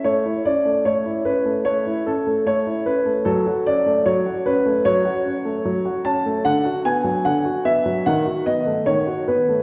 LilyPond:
<<
  \new Staff \with { instrumentName = "Grand piano" } { \time 4/4 \key a \major \tempo 4 = 75 cis''8 d''8 cis''8 b'8 cis''8 a'8 cis''8 b'8 | a'8 d''8 cis''8 b'8 cis''4. a''8 | fis''8 gis''8 fis''8 e''8 fis''8 dis''8 cis''8 b'8 | }
  \new Staff \with { instrumentName = "Grand piano" } { \time 4/4 \key a \major a16 e'16 cis'16 a16 a16 e'16 cis'16 a16 a16 e'16 cis'16 a16 a16 e'16 cis'16 a16 | fis16 fis'16 cis'16 a16 fis16 fis'16 cis'16 a16 fis16 fis'16 cis'16 a16 fis16 fis'16 cis'16 a16 | d16 fis'16 b16 fis16 d16 fis'16 b16 fis16 dis16 fis'16 b16 a16 dis16 fis'16 b16 a16 | }
>>